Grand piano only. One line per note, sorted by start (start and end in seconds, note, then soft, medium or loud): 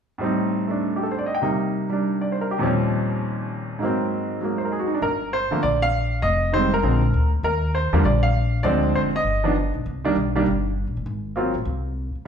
0.18 1.40 A2 medium
0.18 1.41 G3 soft
0.18 1.41 C4 soft
0.24 1.41 D#4 medium
0.68 1.40 A3 soft
0.68 1.42 D4 soft
0.96 1.05 G4 soft
1.03 1.14 A4 soft
1.12 1.24 C5 soft
1.19 1.31 D5 soft
1.26 1.36 D#5 soft
1.35 1.44 G5 soft
1.42 2.62 C3 soft
1.42 1.88 G3 soft
1.42 2.62 A#3 soft
1.42 2.62 D#4 medium
1.90 2.60 G3 soft
1.90 2.62 D4 soft
2.21 2.37 D5 soft
2.32 2.49 C5 soft
2.41 2.56 A#4 soft
2.51 2.66 G4 soft
2.58 3.80 D#2 medium
2.58 3.81 A#2 soft
2.58 3.81 F3 soft
2.58 3.82 G3 soft
2.62 3.82 C4 soft
2.62 3.83 C#4 medium
3.79 5.01 G#2 medium
3.79 4.39 F#3 soft
3.79 4.43 A#3 soft
3.85 5.04 C4 medium
4.41 5.02 F#3 soft
4.41 5.03 G#3 soft
4.41 5.04 A#3 soft
4.58 4.67 C5 soft
4.65 4.75 A#4 soft
4.72 4.85 G#4 soft
4.79 4.92 F#4 soft
4.87 4.97 D#4 soft
4.94 5.05 D4 soft
5.02 5.34 A#4 medium
5.33 5.64 C5 medium
5.51 5.61 D3 medium
5.51 5.62 F3 soft
5.51 5.62 A3 soft
5.51 5.62 A#3 medium
5.63 5.80 D5 medium
5.82 6.25 F5 loud
6.22 6.54 D#5 medium
6.53 6.70 D#3 medium
6.53 6.70 G3 soft
6.53 6.70 G#3 soft
6.53 6.71 C4 medium
6.53 6.71 C5 medium
6.74 7.29 A#4 medium
6.83 7.00 D3 soft
6.83 7.01 F3 soft
6.83 7.00 G#3 soft
6.83 7.01 C4 medium
7.44 7.72 A#4 medium
7.75 8.02 C5 medium
7.93 8.03 D3 medium
7.93 8.03 F3 medium
7.93 8.03 G3 medium
7.93 8.03 A#3 medium
8.05 8.22 D5 medium
8.23 8.65 F5 medium
8.63 9.09 D3 medium
8.63 9.10 F3 medium
8.63 9.10 G#3 medium
8.63 9.10 C4 medium
8.63 8.92 D5 medium
8.95 9.00 C5 medium
9.16 9.71 D#5 medium
9.44 9.54 D#3 medium
9.44 9.54 F3 medium
9.44 9.54 B3 medium
9.44 9.54 D4 medium
10.04 10.14 D#3 medium
10.04 10.15 G3 medium
10.04 10.14 A#3 medium
10.04 10.15 D4 medium
10.35 10.45 D#3 medium
10.35 10.45 G3 medium
10.35 10.45 A#3 medium
10.35 10.45 D4 medium
11.36 11.53 F#3 medium
11.36 11.53 A#3 medium
11.36 11.53 C4 soft
11.36 11.53 F4 medium